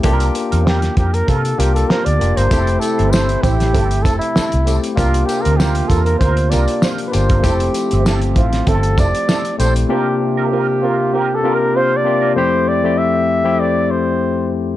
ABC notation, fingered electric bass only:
X:1
M:4/4
L:1/16
Q:"Swing 16ths" 1/4=98
K:F
V:1 name="Fingered electric bass" clef=bass
C,,2 z E,,3 F,,2 C,2 C,,2 z D,, F,,, G,,, | F,,,2 z G,,,3 A,,,2 G,,,2 F,,, z2 C,,2 z | C,,2 z D,,3 E,,2 D,,2 C,, z3 G,,,2 | F,,,2 z G,,,3 A,,,2 G,,,2 F,,, z3 B,,,2 |
z16 | z16 |]